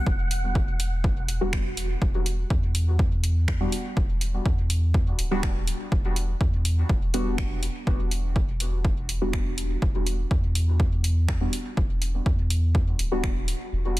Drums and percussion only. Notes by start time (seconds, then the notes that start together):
0.07 kick
0.31 open hi-hat
0.55 kick
0.80 open hi-hat
1.04 kick
1.28 open hi-hat
1.53 finger snap, kick
1.77 open hi-hat
2.02 kick
2.26 open hi-hat
2.50 kick
2.75 open hi-hat
2.99 kick
3.24 open hi-hat
3.48 finger snap, kick
3.72 open hi-hat
3.97 kick
4.21 open hi-hat
4.46 kick
4.70 open hi-hat
4.94 kick
5.19 open hi-hat
5.43 finger snap, kick
5.68 open hi-hat
5.92 kick
6.16 open hi-hat
6.41 kick
6.65 open hi-hat
6.89 kick
7.14 open hi-hat
7.38 finger snap, kick
7.63 open hi-hat
7.87 kick
8.11 open hi-hat
8.36 kick
8.60 open hi-hat
8.85 kick
9.09 open hi-hat
9.33 finger snap, kick
9.58 open hi-hat
9.82 kick
10.07 open hi-hat
10.31 kick
10.55 open hi-hat
10.80 kick
11.04 open hi-hat
11.28 finger snap, kick
11.53 open hi-hat
11.77 kick
12.02 open hi-hat
12.26 kick
12.50 open hi-hat
12.75 kick
12.99 open hi-hat
13.24 finger snap, kick
13.48 open hi-hat
13.97 open hi-hat